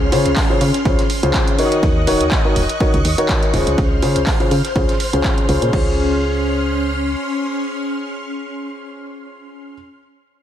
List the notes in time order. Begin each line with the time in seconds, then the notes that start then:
Already playing: C#2 C#4 C6 F6, downlifter
0.12 C#3 C#4 F4 G#4 C5, open hi-hat, ride
0.26 C#2, closed hi-hat
0.36 kick, snare, clap, open hi-hat
0.50 C#3 C#4 F4 G#4 C5
0.61 C#3, open hi-hat, ride
0.74 snare, closed hi-hat
0.85 C#2 C#3 C#4 F4 G#4 C5, kick, ride
0.99 snare, closed hi-hat
1.10 open hi-hat, ride
1.23 C#2 C#3 C#4 F4 G#4 C5, closed hi-hat
1.34 kick, snare, clap, ride
1.48 closed hi-hat
1.58 D#3 D#4 F#4 A#4 C#5 D#5 C#6 F#6, open hi-hat, ride
1.72 closed hi-hat
1.83 D#2, kick, ride
2.07 D#1 D#3 D#4 F#4 A#4 C#5, open hi-hat, ride
2.21 D#2, closed hi-hat
2.31 kick, snare, clap, ride
2.45 D#3 D#4 F#4 A#4 C#5
2.56 D#1, open hi-hat, ride
2.69 closed hi-hat
2.80 D#3 D#4 F#4 A#4 C#5, kick, ride
2.94 C#2, closed hi-hat, ride
3.05 D#2, open hi-hat, ride
3.18 D#3 D#4 F#4 A#4 C#5, closed hi-hat
3.29 kick, snare, clap, ride
3.43 closed hi-hat
3.54 D#1 C#3 C#4 F4 G#4 C5, snare, open hi-hat, ride
3.67 C#2, closed hi-hat
3.78 C#2 C5 C6 F6, kick, ride
4.02 C#3 C#4 F4 G#4 C5, open hi-hat, ride
4.16 C#2, closed hi-hat
4.27 kick, snare, clap, open hi-hat
4.40 C#3 C#4 F4 G#4 C5, closed hi-hat
4.51 C#3, open hi-hat, ride
4.65 snare, closed hi-hat
4.76 C#2 C#3 C#4 F4 G#4 C5, kick, ride
4.89 snare, closed hi-hat
5.00 open hi-hat, ride
5.13 C#2 C#3 C#4 F4 G#4 C5, closed hi-hat
5.24 kick, snare, clap, ride
5.38 closed hi-hat
5.49 C#2 C#3 C#4 F4 G#4 C5, open hi-hat, ride
5.62 A#2, closed hi-hat
5.73 C#2 C#4 F4 G#4 C5 C6 F6, kick, crash